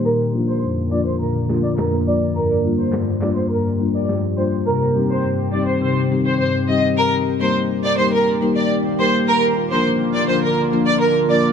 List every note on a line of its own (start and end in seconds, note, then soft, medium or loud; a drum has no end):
0.00 4.63 A#3 medium
0.05 0.48 A#2 medium
0.05 2.34 D3 medium
0.05 2.34 F4 medium
0.05 0.17 A#4 medium
0.33 0.45 F3 medium
0.33 0.45 A#3 medium
0.33 0.46 D4 medium
0.33 0.46 F4 medium
0.48 0.60 C5 medium
0.63 1.06 F2 medium
0.91 1.03 F3 medium
0.91 1.03 A#3 medium
0.91 1.03 D4 medium
0.91 1.04 F4 medium
0.91 1.04 D5 medium
1.06 1.18 C5 medium
1.20 1.63 A#2 medium
1.20 1.32 A#4 medium
1.49 1.61 F3 medium
1.49 1.61 A#3 medium
1.49 1.61 D4 medium
1.49 1.61 F4 medium
1.49 snare medium
1.63 1.76 D5 medium
1.77 2.21 F2 medium
1.77 1.90 A#4 medium
1.77 snare loud
1.77 clap medium
2.06 2.18 F3 medium
2.06 2.18 A#3 medium
2.06 2.19 D4 medium
2.06 2.19 F4 medium
2.06 2.19 D5 medium
2.36 2.79 G2 medium
2.36 4.64 F3 medium
2.36 6.94 G4 medium
2.36 2.48 A#4 loud
2.64 2.76 G3 medium
2.64 2.76 A#3 medium
2.64 2.76 D4 medium
2.64 2.77 F4 medium
2.79 2.91 C5 medium
2.93 3.36 G2 medium
2.93 snare loud
2.93 clap medium
3.21 3.33 G3 medium
3.21 3.34 A#3 medium
3.21 3.34 D4 medium
3.21 3.34 F4 medium
3.21 3.35 D5 medium
3.21 snare medium
3.21 clap medium
3.37 3.49 C5 medium
3.51 3.94 G2 medium
3.51 3.63 A#4 medium
3.79 3.91 G3 medium
3.79 3.91 A#3 medium
3.79 3.92 D4 medium
3.79 3.92 F4 medium
3.94 4.07 D5 medium
4.09 4.52 G2 medium
4.09 snare medium
4.37 4.49 G3 medium
4.37 4.49 A#3 medium
4.37 4.49 D4 medium
4.37 4.50 F4 medium
4.37 4.50 C5 medium
4.66 5.10 C3 medium
4.66 6.95 D#3 medium
4.66 6.95 C4 medium
4.66 4.79 A#4 loud
4.95 5.07 G3 medium
4.95 5.07 C4 medium
4.95 5.07 D#4 medium
4.95 5.07 G4 medium
5.10 5.22 C5 medium
5.24 5.67 G2 medium
5.52 5.64 G3 medium
5.52 5.64 C4 medium
5.52 5.65 D#4 medium
5.52 5.65 G4 medium
5.52 5.65 D5 medium
5.68 5.80 C5 medium
5.82 6.25 C3 medium
5.82 5.94 C5 medium
6.10 6.22 G3 medium
6.10 6.22 C4 medium
6.10 6.23 D#4 medium
6.10 6.23 G4 medium
6.26 6.38 C5 medium
6.40 6.83 G2 medium
6.40 6.52 C5 medium
6.67 6.80 G3 medium
6.67 6.80 C4 medium
6.67 6.80 D#4 medium
6.67 6.80 G4 medium
6.67 6.81 D#5 medium
6.97 9.26 D#3 medium
6.97 11.53 A#3 medium
6.97 9.26 G4 loud
6.97 7.10 A#4 loud
7.25 7.32 G4 medium
7.25 7.32 A#4 medium
7.40 7.52 G3 medium
7.40 7.52 A#3 medium
7.40 7.52 D#4 medium
7.40 7.52 G4 medium
7.40 7.52 A#4 medium
7.40 7.53 C5 medium
7.83 7.89 G4 medium
7.83 7.90 A#4 medium
7.83 7.96 D5 medium
7.98 8.10 G3 medium
7.98 8.10 A#3 medium
7.98 8.10 D#4 medium
7.98 8.10 G4 medium
7.98 8.10 A#4 medium
7.98 8.11 C5 medium
8.13 8.25 A#4 loud
8.41 8.53 G3 medium
8.41 8.53 A#3 medium
8.41 8.53 D#4 medium
8.41 8.53 G4 medium
8.41 8.54 A#4 medium
8.56 8.68 D5 medium
8.98 9.10 G3 medium
8.98 9.11 A#3 medium
8.98 9.11 D#4 medium
8.98 9.11 G4 medium
8.98 9.11 A#4 medium
8.98 9.12 C5 medium
9.28 11.53 D3 medium
9.28 11.53 F4 medium
9.28 9.40 A#4 loud
9.56 9.62 F4 medium
9.56 9.63 A#4 medium
9.71 9.83 F3 medium
9.71 9.83 A#3 medium
9.71 9.83 D4 medium
9.71 9.83 F4 medium
9.71 9.84 A#4 medium
9.71 9.84 C5 medium
10.14 10.20 F4 medium
10.14 10.21 A#4 medium
10.14 10.27 D5 medium
10.29 10.40 F3 medium
10.29 10.41 A#3 medium
10.29 10.41 D4 medium
10.29 10.41 F4 medium
10.29 10.41 A#4 medium
10.29 10.41 C5 medium
10.43 10.56 A#4 medium
10.72 10.84 F3 medium
10.72 10.84 A#3 medium
10.72 10.84 D4 medium
10.72 10.84 F4 medium
10.72 10.84 A#4 medium
10.87 10.99 D5 medium
11.01 11.13 A#4 medium
11.29 11.41 F3 medium
11.29 11.41 A#3 medium
11.29 11.42 D4 medium
11.29 11.42 F4 medium
11.29 11.42 A#4 medium
11.29 11.42 D5 medium